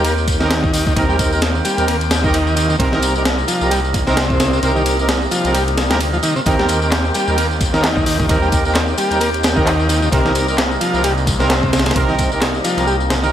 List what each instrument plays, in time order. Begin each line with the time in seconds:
Already playing: detuned saw bass D#2, tonewheel organ D#3 A#3 C4 G4
0.04 transistor combo organ A#3, ride, tambourine
0.18 tambourine
0.28 kick, ride, tambourine
0.40 transistor combo organ D#3, brass ensemble C4 D#4 G4 A#4, snare, tambourine
0.51 snare, ride, tambourine
0.64 kick, tambourine
0.73 transistor combo organ D#3, open hi-hat, tambourine
0.87 transistor combo organ D#3, kick, tambourine
0.96 detuned saw bass D#2, transistor combo organ D#3, brass ensemble C4 D#4 G4 A#4, kick, ride, tambourine
1.09 transistor combo organ G3, tambourine
1.19 kick, ride, tambourine
1.32 brass ensemble C4 D#4 G4 A#4, tambourine
1.42 snare, ride, tambourine
1.55 tambourine
1.65 transistor combo organ G3, ride, tambourine
1.78 detuned saw bass D#2, brass ensemble C4 D#4 G4 A#4, ride, tambourine
1.88 transistor combo organ A#3, ride, tambourine
2.01 ride, tambourine
2.11 snare, ride, tambourine
2.24 transistor combo organ D#3, brass ensemble C4 D#4 G4 A#4, kick, tambourine
2.34 ride, tambourine
2.47 tambourine
2.56 transistor combo organ D#3, ride, tambourine
2.69 transistor combo organ D#3, tambourine
2.79 detuned saw bass C2, transistor combo organ C3, tonewheel organ C3 G3 A#3 D#4, brass ensemble C4 D#4 G4 A#4, kick, ride, tambourine
2.92 transistor combo organ D#3, snare, tambourine
3.02 ride, tambourine
3.15 brass ensemble C4 D#4 G4 A#4, tambourine
3.25 snare, ride, tambourine
3.38 tambourine
3.48 transistor combo organ F3, ride, tambourine
3.61 detuned saw bass C2, brass ensemble C4 D#4 G4 A#4, tambourine
3.71 transistor combo organ G3, ride, tambourine
3.84 tambourine
3.94 kick, ride, tambourine
4.07 transistor combo organ C3, brass ensemble C4 D#4 G4 A#4, snare, tambourine
4.17 snare, ride, tambourine
4.30 kick, tambourine
4.40 transistor combo organ C3, snare, ride, tambourine
4.53 transistor combo organ C3, tambourine
4.63 detuned saw bass C2, transistor combo organ C3, brass ensemble C4 D#4 G4 A#4, ride, tambourine
4.76 transistor combo organ D#3, tambourine
4.86 ride, tambourine
4.99 brass ensemble C4 D#4 G4 A#4, tambourine
5.09 snare, ride, tambourine
5.22 tambourine
5.31 transistor combo organ F3, ride, tambourine
5.44 detuned saw bass C2, brass ensemble C4 D#4 G4 A#4, ride, tambourine
5.54 transistor combo organ G3, ride, tambourine
5.68 ride, tambourine
5.77 snare, ride, tambourine
5.90 detuned saw bass D2, transistor combo organ G3, brass ensemble C4 D#4 G4 A#4, snare, ride, tambourine
6.00 ride, tambourine
6.13 transistor combo organ F3, tambourine
6.23 transistor combo organ D#3, ride, tambourine
6.36 transistor combo organ C3, tambourine
6.46 detuned saw bass D#2, transistor combo organ D#3, tonewheel organ D#3 C4 G4, brass ensemble C4 D#4 G4 A#4, kick, ride, tambourine
6.59 transistor combo organ G3, snare, tambourine
6.69 ride, tambourine
6.82 brass ensemble C4 D#4 G4 A#4, tambourine
6.91 snare, clap, ride, tambourine
7.05 tambourine
7.14 transistor combo organ G3, ride, tambourine
7.27 detuned saw bass D#2, brass ensemble C4 D#4 G4 A#4, tambourine
7.38 transistor combo organ A#3, ride, tambourine
7.51 tambourine
7.61 kick, ride, tambourine
7.74 transistor combo organ D#3, brass ensemble C4 D#4 G4 A#4, snare, tambourine
7.84 snare, clap, ride, tambourine
7.97 kick, tambourine
8.06 transistor combo organ D#3, open hi-hat, tambourine
8.19 transistor combo organ D#3, kick, tambourine
8.29 detuned saw bass D#2, transistor combo organ D#3, brass ensemble C4 D#4 G4 A#4, kick, ride, tambourine
8.42 transistor combo organ G3, tambourine
8.52 kick, ride, tambourine
8.65 brass ensemble C4 D#4 G4 A#4, tambourine
8.75 snare, clap, ride, tambourine
8.88 tambourine
8.98 transistor combo organ G3, ride, tambourine
9.11 detuned saw bass D#2, brass ensemble C4 D#4 G4 A#4, ride, tambourine
9.21 transistor combo organ A#3, ride, tambourine
9.34 ride, tambourine
9.43 snare, ride, tambourine
9.56 transistor combo organ D#3, brass ensemble C4 D#4 G4 A#4, kick, tambourine
9.66 clap, ride, tambourine
9.79 tambourine
9.89 transistor combo organ D#3, ride, tambourine
10.02 transistor combo organ D#3, tambourine
10.12 detuned saw bass C2, transistor combo organ C3, tonewheel organ C3 G3 D#4, brass ensemble C4 D#4 G4 A#4, kick, ride, tambourine
10.25 transistor combo organ D#3, snare, tambourine
10.35 ride, tambourine
10.48 brass ensemble C4 D#4 G4 A#4, tambourine
10.58 snare, clap, ride, tambourine
10.71 tambourine
10.81 transistor combo organ F3, ride, tambourine
10.94 detuned saw bass C2, brass ensemble C4 D#4 G4 A#4, tambourine
11.04 transistor combo organ G3, ride, tambourine
11.18 tambourine
11.27 kick, ride, tambourine
11.40 transistor combo organ C3, brass ensemble C4 D#4 G4 A#4, snare, tambourine
11.50 snare, clap, ride, tambourine
11.63 kick, tambourine
11.73 transistor combo organ C3, snare, ride, tambourine
11.79 snare, ride
11.86 transistor combo organ C3, snare, ride, tambourine
11.91 snare, ride
11.96 detuned saw bass C2, transistor combo organ C3, brass ensemble C4 D#4 G4 A#4, kick, ride, tambourine
12.08 transistor combo organ D#3, tambourine
12.19 kick, ride, tambourine
12.32 brass ensemble C4 D#4 G4 A#4, tambourine
12.41 snare, clap, ride, tambourine
12.54 tambourine
12.64 transistor combo organ F3, ride, tambourine
12.77 detuned saw bass C2, brass ensemble C4 D#4 G4 A#4, ride, tambourine
12.87 transistor combo organ G3, tambourine
13.00 tambourine
13.10 transistor combo organ C3, snare, ride, tambourine
13.23 transistor combo organ D#3, brass ensemble C4 D#4 G4 A#4, tambourine